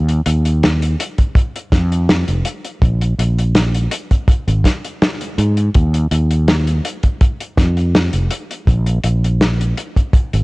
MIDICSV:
0, 0, Header, 1, 3, 480
1, 0, Start_track
1, 0, Tempo, 731707
1, 1851, Time_signature, 4, 2, 24, 8
1, 6847, End_track
2, 0, Start_track
2, 0, Title_t, "Fretless electric bass"
2, 0, Program_c, 0, 35
2, 0, Note_on_c, 0, 39, 95
2, 128, Note_off_c, 0, 39, 0
2, 171, Note_on_c, 0, 39, 84
2, 618, Note_off_c, 0, 39, 0
2, 1129, Note_on_c, 0, 41, 90
2, 1460, Note_off_c, 0, 41, 0
2, 1498, Note_on_c, 0, 29, 79
2, 1590, Note_off_c, 0, 29, 0
2, 1848, Note_on_c, 0, 34, 97
2, 2048, Note_off_c, 0, 34, 0
2, 2090, Note_on_c, 0, 34, 83
2, 2538, Note_off_c, 0, 34, 0
2, 2937, Note_on_c, 0, 32, 83
2, 3029, Note_off_c, 0, 32, 0
2, 3528, Note_on_c, 0, 44, 78
2, 3729, Note_off_c, 0, 44, 0
2, 3773, Note_on_c, 0, 39, 100
2, 3971, Note_off_c, 0, 39, 0
2, 4009, Note_on_c, 0, 39, 83
2, 4457, Note_off_c, 0, 39, 0
2, 4971, Note_on_c, 0, 41, 92
2, 5301, Note_off_c, 0, 41, 0
2, 5336, Note_on_c, 0, 29, 78
2, 5429, Note_off_c, 0, 29, 0
2, 5688, Note_on_c, 0, 34, 95
2, 5889, Note_off_c, 0, 34, 0
2, 5929, Note_on_c, 0, 34, 83
2, 6377, Note_off_c, 0, 34, 0
2, 6779, Note_on_c, 0, 32, 84
2, 6847, Note_off_c, 0, 32, 0
2, 6847, End_track
3, 0, Start_track
3, 0, Title_t, "Drums"
3, 56, Note_on_c, 9, 42, 55
3, 121, Note_off_c, 9, 42, 0
3, 169, Note_on_c, 9, 42, 106
3, 235, Note_off_c, 9, 42, 0
3, 297, Note_on_c, 9, 42, 55
3, 362, Note_off_c, 9, 42, 0
3, 415, Note_on_c, 9, 42, 79
3, 418, Note_on_c, 9, 38, 114
3, 481, Note_off_c, 9, 42, 0
3, 483, Note_off_c, 9, 38, 0
3, 539, Note_on_c, 9, 42, 61
3, 604, Note_off_c, 9, 42, 0
3, 655, Note_on_c, 9, 42, 102
3, 721, Note_off_c, 9, 42, 0
3, 775, Note_on_c, 9, 42, 57
3, 778, Note_on_c, 9, 36, 63
3, 841, Note_off_c, 9, 42, 0
3, 843, Note_off_c, 9, 36, 0
3, 887, Note_on_c, 9, 36, 120
3, 894, Note_on_c, 9, 42, 76
3, 953, Note_off_c, 9, 36, 0
3, 960, Note_off_c, 9, 42, 0
3, 1021, Note_on_c, 9, 42, 62
3, 1087, Note_off_c, 9, 42, 0
3, 1129, Note_on_c, 9, 36, 110
3, 1130, Note_on_c, 9, 38, 58
3, 1131, Note_on_c, 9, 42, 96
3, 1194, Note_off_c, 9, 36, 0
3, 1196, Note_off_c, 9, 38, 0
3, 1196, Note_off_c, 9, 42, 0
3, 1259, Note_on_c, 9, 42, 58
3, 1324, Note_off_c, 9, 42, 0
3, 1371, Note_on_c, 9, 38, 115
3, 1374, Note_on_c, 9, 42, 72
3, 1437, Note_off_c, 9, 38, 0
3, 1440, Note_off_c, 9, 42, 0
3, 1494, Note_on_c, 9, 42, 55
3, 1560, Note_off_c, 9, 42, 0
3, 1607, Note_on_c, 9, 42, 104
3, 1672, Note_off_c, 9, 42, 0
3, 1735, Note_on_c, 9, 42, 55
3, 1801, Note_off_c, 9, 42, 0
3, 1848, Note_on_c, 9, 36, 127
3, 1852, Note_on_c, 9, 42, 71
3, 1914, Note_off_c, 9, 36, 0
3, 1918, Note_off_c, 9, 42, 0
3, 1977, Note_on_c, 9, 42, 60
3, 2042, Note_off_c, 9, 42, 0
3, 2094, Note_on_c, 9, 42, 101
3, 2160, Note_off_c, 9, 42, 0
3, 2221, Note_on_c, 9, 42, 56
3, 2286, Note_off_c, 9, 42, 0
3, 2328, Note_on_c, 9, 42, 83
3, 2330, Note_on_c, 9, 38, 108
3, 2394, Note_off_c, 9, 42, 0
3, 2396, Note_off_c, 9, 38, 0
3, 2457, Note_on_c, 9, 42, 55
3, 2523, Note_off_c, 9, 42, 0
3, 2568, Note_on_c, 9, 42, 108
3, 2633, Note_off_c, 9, 42, 0
3, 2697, Note_on_c, 9, 36, 64
3, 2697, Note_on_c, 9, 42, 59
3, 2762, Note_off_c, 9, 42, 0
3, 2763, Note_off_c, 9, 36, 0
3, 2807, Note_on_c, 9, 36, 120
3, 2813, Note_on_c, 9, 42, 76
3, 2873, Note_off_c, 9, 36, 0
3, 2879, Note_off_c, 9, 42, 0
3, 2939, Note_on_c, 9, 42, 52
3, 3004, Note_off_c, 9, 42, 0
3, 3046, Note_on_c, 9, 36, 67
3, 3052, Note_on_c, 9, 42, 93
3, 3054, Note_on_c, 9, 38, 58
3, 3112, Note_off_c, 9, 36, 0
3, 3118, Note_off_c, 9, 42, 0
3, 3120, Note_off_c, 9, 38, 0
3, 3179, Note_on_c, 9, 42, 53
3, 3245, Note_off_c, 9, 42, 0
3, 3292, Note_on_c, 9, 42, 71
3, 3293, Note_on_c, 9, 38, 127
3, 3358, Note_off_c, 9, 42, 0
3, 3359, Note_off_c, 9, 38, 0
3, 3417, Note_on_c, 9, 42, 64
3, 3482, Note_off_c, 9, 42, 0
3, 3532, Note_on_c, 9, 42, 90
3, 3597, Note_off_c, 9, 42, 0
3, 3654, Note_on_c, 9, 42, 50
3, 3720, Note_off_c, 9, 42, 0
3, 3769, Note_on_c, 9, 42, 76
3, 3773, Note_on_c, 9, 36, 112
3, 3834, Note_off_c, 9, 42, 0
3, 3839, Note_off_c, 9, 36, 0
3, 3897, Note_on_c, 9, 42, 55
3, 3962, Note_off_c, 9, 42, 0
3, 4010, Note_on_c, 9, 42, 93
3, 4076, Note_off_c, 9, 42, 0
3, 4137, Note_on_c, 9, 42, 57
3, 4203, Note_off_c, 9, 42, 0
3, 4251, Note_on_c, 9, 42, 72
3, 4253, Note_on_c, 9, 38, 119
3, 4316, Note_off_c, 9, 42, 0
3, 4319, Note_off_c, 9, 38, 0
3, 4378, Note_on_c, 9, 42, 55
3, 4443, Note_off_c, 9, 42, 0
3, 4493, Note_on_c, 9, 42, 100
3, 4559, Note_off_c, 9, 42, 0
3, 4612, Note_on_c, 9, 42, 55
3, 4616, Note_on_c, 9, 36, 57
3, 4678, Note_off_c, 9, 42, 0
3, 4682, Note_off_c, 9, 36, 0
3, 4729, Note_on_c, 9, 42, 82
3, 4731, Note_on_c, 9, 36, 114
3, 4795, Note_off_c, 9, 42, 0
3, 4796, Note_off_c, 9, 36, 0
3, 4857, Note_on_c, 9, 42, 55
3, 4923, Note_off_c, 9, 42, 0
3, 4969, Note_on_c, 9, 38, 61
3, 4971, Note_on_c, 9, 36, 108
3, 4973, Note_on_c, 9, 42, 95
3, 5034, Note_off_c, 9, 38, 0
3, 5036, Note_off_c, 9, 36, 0
3, 5038, Note_off_c, 9, 42, 0
3, 5096, Note_on_c, 9, 42, 58
3, 5162, Note_off_c, 9, 42, 0
3, 5214, Note_on_c, 9, 38, 113
3, 5214, Note_on_c, 9, 42, 74
3, 5279, Note_off_c, 9, 42, 0
3, 5280, Note_off_c, 9, 38, 0
3, 5333, Note_on_c, 9, 42, 60
3, 5398, Note_off_c, 9, 42, 0
3, 5448, Note_on_c, 9, 42, 99
3, 5514, Note_off_c, 9, 42, 0
3, 5581, Note_on_c, 9, 42, 58
3, 5646, Note_off_c, 9, 42, 0
3, 5689, Note_on_c, 9, 36, 116
3, 5692, Note_on_c, 9, 42, 80
3, 5755, Note_off_c, 9, 36, 0
3, 5758, Note_off_c, 9, 42, 0
3, 5814, Note_on_c, 9, 42, 57
3, 5880, Note_off_c, 9, 42, 0
3, 5927, Note_on_c, 9, 42, 96
3, 5992, Note_off_c, 9, 42, 0
3, 6063, Note_on_c, 9, 42, 52
3, 6128, Note_off_c, 9, 42, 0
3, 6172, Note_on_c, 9, 38, 108
3, 6172, Note_on_c, 9, 42, 77
3, 6238, Note_off_c, 9, 38, 0
3, 6238, Note_off_c, 9, 42, 0
3, 6302, Note_on_c, 9, 42, 55
3, 6368, Note_off_c, 9, 42, 0
3, 6411, Note_on_c, 9, 42, 90
3, 6477, Note_off_c, 9, 42, 0
3, 6536, Note_on_c, 9, 36, 59
3, 6539, Note_on_c, 9, 42, 54
3, 6601, Note_off_c, 9, 36, 0
3, 6605, Note_off_c, 9, 42, 0
3, 6646, Note_on_c, 9, 36, 125
3, 6649, Note_on_c, 9, 42, 70
3, 6712, Note_off_c, 9, 36, 0
3, 6714, Note_off_c, 9, 42, 0
3, 6778, Note_on_c, 9, 42, 57
3, 6844, Note_off_c, 9, 42, 0
3, 6847, End_track
0, 0, End_of_file